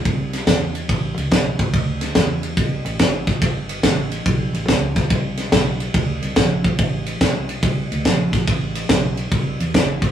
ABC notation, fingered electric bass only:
X:1
M:4/4
L:1/8
Q:"Swing" 1/4=142
K:Am
V:1 name="Fingered electric bass" clef=bass
C,,2 E,,2 A,,, ^C,, B,,, A,,, | D,,2 E,,2 C,, A,,, _A,,,2 | G,,,2 A,,,2 B,,, A,,, _D,,2 | C,,2 B,,,2 D,, C,, _B,,,2 |
A,,,2 C,,2 C,, D,, _B,,,2 | A,,,2 _C,,2 =C,, E,, _A,,,2 |]